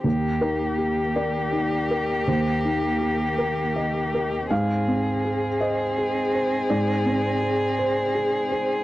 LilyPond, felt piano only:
\new Staff \with { instrumentName = "Felt piano" } { \time 6/8 \key ees \major \tempo 4. = 54 << { r8 bes'4 d''4. | c''4. bes'4. | f''4. ees''4. | d''4. c''4. | } \\ { ees,8 ees'8 g'8 bes'8 ees'8 bes'8 | ees,8 ees'8 g'4 ees''8 bes'8 | aes,8 c'8 aes'8 c''8 aes'8 c''8 | aes,8 c'8 aes'4 aes'8 c''8 | } >> }